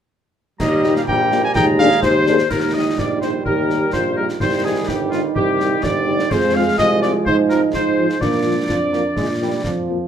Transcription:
0.60 tuba D#2, trombone section A#2 G3, woodwind section G4 A#5, cornet D#5, concert bass drum, snare, crash
0.84 french horn section A#3 D#4 G4, snare
0.96 cornet F5, snare
1.07 tuba A#1, woodwind section G4 A#5, cornet G5, concert bass drum
1.31 french horn section A#3 D#4 G4, snare
1.44 cornet G#5
1.55 tuba D#2, trombone section G#3, woodwind section G#4 A#5, cornet G5, concert bass drum, snare
1.79 french horn section A#3 D4 G#4, cornet F5, snare
1.91 snare
2.02 tuba D#2, woodwind section C5, cornet C5, concert bass drum, snare
2.26 french horn section A#3 D4 G#4, snare
2.38 snare
2.50 tuba D#2, trombone section D#3 G3, euphonium D#4, woodwind section A#4, cornet A#4, concert bass drum, snare, crash
2.74 french horn section G3 D#4 G4, woodwind section D#5, cornet D#5
2.97 tuba A#1, woodwind section D5, cornet D5, concert bass drum, snare
3.21 french horn section G3 D#4 G4, woodwind section C5, cornet C5, snare
3.45 tuba D#2, euphonium G4, woodwind section A#4, cornet A#4, concert bass drum
3.69 french horn section G3 D#4 G4, snare
3.93 tuba A#1, euphonium F4, cornet C5, woodwind section C5, concert bass drum, snare
4.17 french horn section G3 D#4 G4, woodwind section A#4, cornet A#4
4.29 snare
4.40 tuba C2, trombone section D#3 G3, euphonium D#4, woodwind section C5, cornet C5, concert bass drum, snare
4.64 french horn section G3 D#4 G4, woodwind section G#4, cornet G#4
4.88 tuba G1, woodwind section G4, cornet G4, concert bass drum, snare
5.11 french horn section G3 D#4 G4, woodwind section F4, cornet F4, snare
5.36 tuba C2, woodwind section G4, cornet G4, concert bass drum
5.60 french horn section G3 D#4 G4, snare
5.83 tuba G1, woodwind section D5, cornet D5, concert bass drum, snare
6.07 french horn section G3 D#4 G4
6.19 snare
6.31 tuba F2, trombone section F3 G#3, euphonium G#4, woodwind section C5, cornet C5, concert bass drum, snare, crash
6.55 french horn section G#3 C4 F4, woodwind section F5, cornet F5
6.78 tuba C2, euphonium F4, woodwind section D#5, cornet D#5, concert bass drum, snare
7.02 french horn section G#3 C4 F4, woodwind section D5, cornet D5, snare
7.26 tuba G#2, euphonium D#4, woodwind section C5, cornet C5, concert bass drum
7.50 french horn section F3 C4 F4, woodwind section A#4, cornet A#4, snare
7.73 tuba G#2, woodwind section C5, cornet C5, concert bass drum, snare
7.98 french horn section F3 C4 F4
8.10 snare
8.21 tuba A#2, trombone section F3 A#3, euphonium D4, woodwind section D5, cornet D5, concert bass drum, snare
8.45 french horn section F3 A#3 F4
8.69 tuba F2, trombone section F3, concert bass drum, snare
8.92 french horn section F3 A#3 F4, trombone section A#3, snare
9.16 tuba A#2, trombone section G#3, concert bass drum, snare
9.40 french horn section F3 A#3 F4, trombone section G3
9.64 tuba F2, trombone section F3, concert bass drum, snare
9.89 french horn section F3 A#3 F4

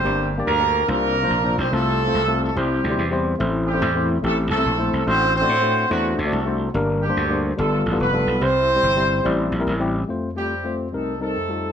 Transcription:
Already playing: horn section C4 G4 C5
0.04 slap bass G1, tine electric piano G2 A#3 D4 G4 D5
0.38 tine electric piano A#3 D4 G4 D5
0.47 slap bass D2, horn section A#3 D4 G4 A#4
0.59 tine electric piano A#3 D4 G4 D5
0.87 slap bass C2, tine electric piano C3 A#3 D4 F4 C5, horn section A#3 D4 F4 A#4
1.22 tine electric piano A#3 D4 F4 C5
1.30 slap bass A#1
1.44 tine electric piano A#3 D4 F4 C5
1.58 slap bass B1, horn section C4 C5
1.71 slap bass C2, tine electric piano C3 A3 C4 F4 C5, horn section A3 C4 F4 A4
2.07 tine electric piano A3 C4 F4 C5
2.15 slap bass C2
2.27 tine electric piano A3 C4 F4 A4
2.43 horn section A3 A4
2.56 slap bass C2, tine electric piano C3 G3 C4 E4 C5, horn section G3 C4 E4 G4
2.84 slap bass D2
2.90 tine electric piano G3 C4 E4 C5
2.98 slap bass E2
3.11 tine electric piano G3 C4 E4 C5
3.39 slap bass A1, tine electric piano A2 A3 C4 E4 C5
3.67 horn section G3 C4 E4 G4
3.74 tine electric piano A3 C4 E4 C5
3.82 slap bass E2
3.95 tine electric piano A3 C4 E4 C5
4.23 slap bass A1, tine electric piano A3 C4 E4 G4, horn section A3 C4 E4 A4
4.51 slap bass C2, horn section A3 C4 E4 A4
4.57 tine electric piano A3 C4 E4 C5
4.66 slap bass A#1
4.78 tine electric piano A3 C4 E4 C5
4.93 slap bass C2
5.06 slap bass A1, tine electric piano A2 A3 D4 F#4 C5, horn section C4 F#4 C5
5.35 horn section C4 F#4 C5
5.41 tine electric piano A3 D4 F#4 D5
5.49 slap bass A2
5.62 tine electric piano A3 D4 F#4 C5
5.90 slap bass E2, horn section F#3 C4 D4 F#4, tine electric piano A3 D4 F#4 C5
6.19 slap bass D2, horn section A3 C4 F#4 A4
6.25 tine electric piano A3 D4 F#4 D5
6.32 slap bass C2
6.46 tine electric piano A3 D4 F#4 C5
6.74 slap bass G1, tine electric piano G2 G3 A#3 D4 A#4
7.03 horn section G3 A#3 D4 G4
7.08 tine electric piano G3 A#3 D4 C5
7.17 slap bass D2
7.29 tine electric piano G3 A#3 D4 C5
7.58 slap bass G1, tine electric piano G2 G3 B3 F4 A4, horn section A3 D4 F4 A4
7.86 slap bass A1, horn section A3 A4
7.92 tine electric piano G3 B3 F4 A4
8.00 slap bass F1, horn section B3 D4 F4 B4
8.13 tine electric piano G3 B3 F4 A4
8.27 slap bass B1
8.40 slap bass C2, tine electric piano C3 G3 C4 E4 C5, horn section C4 E4 G4 C5
8.75 tine electric piano G3 C4 E4 C5
8.83 slap bass G1
8.96 tine electric piano G3 C4 E4 C5
9.24 slap bass A1, tine electric piano G3 C4 E4 D5
9.52 slap bass A#1
9.59 tine electric piano G3 C4 E4 A#4
9.67 slap bass A1
9.79 tine electric piano G3 C4 E4 G4
10.08 tine electric piano F2 A3 C4 F4 C5
10.35 horn section G3 C4 G4, tine electric piano A3 C4 F4 G4
10.64 tine electric piano A3 C4 F4 C5
10.92 tine electric piano C2 C3 G3 C4 D#4 A#4, horn section A3 D#4 A4
11.20 tine electric piano G3 C4 D#4 A#4, horn section A3 C4 D#4 A4
11.36 tine electric piano F2
11.49 tine electric piano G3 D#4 F4 A4

